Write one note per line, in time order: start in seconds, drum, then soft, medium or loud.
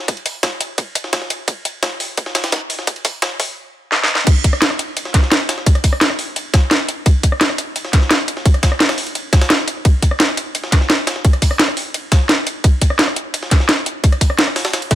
0.08 kick loud
0.08 closed hi-hat medium
0.08 ride medium
0.17 ride soft
0.26 closed hi-hat medium
0.26 open hi-hat medium
0.43 kick loud
0.43 snare loud
0.43 closed hi-hat medium
0.43 ride medium
0.60 closed hi-hat medium
0.60 ride medium
0.78 kick medium
0.78 closed hi-hat medium
0.78 ride medium
0.95 closed hi-hat medium
0.95 ride medium
1.04 snare soft
1.13 kick loud
1.13 snare loud
1.13 closed hi-hat medium
1.13 ride medium
1.22 snare soft
1.30 closed hi-hat medium
1.30 ride medium
1.48 kick loud
1.48 closed hi-hat medium
1.48 ride medium
1.65 closed hi-hat medium
1.65 ride medium
1.83 kick loud
1.83 snare loud
1.83 closed hi-hat medium
1.83 ride medium
2.00 open hi-hat medium
2.00 ride medium
2.17 kick loud
2.17 closed hi-hat medium
2.17 ride medium
2.26 snare soft
2.35 snare loud
2.35 closed hi-hat medium
2.35 ride medium
2.44 snare loud
2.44 ride medium
2.52 kick loud
2.52 snare loud
2.52 closed hi-hat medium
2.52 ride medium
2.70 open hi-hat medium
2.70 ride medium
2.79 snare soft
2.87 kick loud
2.87 closed hi-hat medium
2.87 ride medium
2.96 ride soft
3.05 kick loud
3.05 closed hi-hat medium
3.05 open hi-hat medium
3.22 kick loud
3.22 snare loud
3.22 closed hi-hat medium
3.22 ride medium
3.40 kick loud
3.40 open hi-hat medium
3.40 ride medium
3.92 snare medium
4.04 snare medium
4.15 snare loud
4.27 kick loud
4.27 closed hi-hat medium
4.27 ride medium
4.27 crash loud
4.44 kick medium
4.44 closed hi-hat loud
4.44 ride medium
4.53 cross-stick soft
4.62 snare loud
4.62 closed hi-hat medium
4.62 ride medium
4.70 cross-stick soft
4.79 closed hi-hat loud
4.79 ride medium
4.97 closed hi-hat medium
4.97 ride medium
5.05 snare medium
5.14 kick loud
5.14 snare soft
5.14 closed hi-hat loud
5.14 ride medium
5.23 snare soft
5.32 snare loud
5.32 closed hi-hat medium
5.32 ride loud
5.49 snare loud
5.49 closed hi-hat loud
5.49 ride medium
5.58 snare soft
5.66 kick loud
5.66 closed hi-hat medium
5.66 ride medium
5.75 cross-stick soft
5.75 ride soft
5.84 kick medium
5.84 closed hi-hat loud
5.84 open hi-hat medium
5.93 cross-stick soft
6.01 snare loud
6.01 closed hi-hat medium
6.01 ride medium
6.10 cross-stick soft
6.19 open hi-hat medium
6.19 ride medium
6.36 closed hi-hat medium
6.36 ride medium
6.54 kick loud
6.54 snare loud
6.54 closed hi-hat medium
6.54 ride medium
6.71 snare loud
6.71 closed hi-hat medium
6.71 ride medium
6.89 closed hi-hat medium
6.89 ride medium
7.06 kick loud
7.06 closed hi-hat medium
7.06 ride medium
7.23 kick medium
7.23 closed hi-hat medium
7.23 ride medium
7.32 cross-stick soft
7.41 snare loud
7.41 closed hi-hat medium
7.41 ride medium
7.50 cross-stick soft
7.58 closed hi-hat medium
7.58 ride medium
7.76 closed hi-hat medium
7.76 ride medium
7.85 snare medium
7.93 kick loud
7.93 snare soft
7.93 closed hi-hat medium
7.93 ride medium
8.02 snare soft
8.11 snare loud
8.11 closed hi-hat medium
8.11 ride medium
8.28 closed hi-hat medium
8.28 ride medium
8.37 snare soft
8.45 kick loud
8.45 closed hi-hat medium
8.45 ride medium
8.54 cross-stick soft
8.54 ride soft
8.63 kick medium
8.63 snare loud
8.63 closed hi-hat medium
8.63 ride medium
8.72 cross-stick soft
8.80 snare loud
8.80 closed hi-hat medium
8.80 ride medium
8.89 cross-stick soft
8.89 snare loud
8.89 ride medium
8.98 open hi-hat medium
9.07 ride medium
9.15 closed hi-hat medium
9.15 ride medium
9.33 kick loud
9.33 snare loud
9.33 closed hi-hat medium
9.33 ride medium
9.41 snare loud
9.41 ride medium
9.50 snare loud
9.50 closed hi-hat medium
9.50 ride medium
9.59 snare soft
9.68 closed hi-hat medium
9.68 ride medium
9.85 kick loud
9.85 closed hi-hat medium
9.85 ride medium
10.02 kick medium
10.02 closed hi-hat medium
10.02 ride medium
10.11 cross-stick soft
10.20 snare loud
10.20 closed hi-hat medium
10.20 ride medium
10.29 cross-stick soft
10.37 closed hi-hat medium
10.37 ride medium
10.55 closed hi-hat medium
10.55 ride medium
10.64 snare medium
10.72 kick loud
10.72 snare soft
10.72 closed hi-hat medium
10.72 ride medium
10.81 snare soft
10.90 snare loud
10.90 closed hi-hat medium
10.90 ride medium
11.07 snare loud
11.07 closed hi-hat medium
11.07 ride medium
11.16 snare soft
11.25 kick loud
11.25 closed hi-hat medium
11.25 ride medium
11.33 cross-stick soft
11.33 ride soft
11.42 kick medium
11.42 closed hi-hat medium
11.42 open hi-hat medium
11.51 cross-stick soft
11.59 snare loud
11.59 closed hi-hat medium
11.59 ride medium
11.68 cross-stick soft
11.77 open hi-hat medium
11.77 ride medium
11.94 closed hi-hat medium
11.94 ride medium
12.12 kick loud
12.12 snare loud
12.12 closed hi-hat medium
12.12 ride medium
12.29 snare loud
12.29 closed hi-hat medium
12.29 ride medium
12.47 closed hi-hat medium
12.47 ride medium
12.64 kick loud
12.64 closed hi-hat medium
12.64 ride medium
12.81 kick medium
12.81 closed hi-hat loud
12.81 ride medium
12.90 cross-stick soft
12.99 snare loud
12.99 closed hi-hat medium
12.99 ride medium
13.08 cross-stick soft
13.16 closed hi-hat loud
13.34 closed hi-hat medium
13.34 ride medium
13.43 snare soft
13.51 kick loud
13.51 snare soft
13.51 closed hi-hat loud
13.51 ride medium
13.60 snare soft
13.69 snare loud
13.69 closed hi-hat medium
13.69 ride medium
13.86 closed hi-hat loud
14.04 kick loud
14.04 closed hi-hat medium
14.04 ride medium
14.12 cross-stick soft
14.12 ride soft
14.21 kick medium
14.21 closed hi-hat loud
14.21 open hi-hat medium
14.30 cross-stick soft
14.39 snare loud
14.39 closed hi-hat medium
14.39 ride medium
14.47 cross-stick soft
14.56 snare loud
14.56 open hi-hat medium
14.56 ride medium
14.65 snare loud
14.65 ride medium
14.73 snare loud
14.73 closed hi-hat medium
14.73 ride medium
14.82 ride medium
14.91 kick loud
14.91 snare loud
14.91 closed hi-hat loud
14.91 ride medium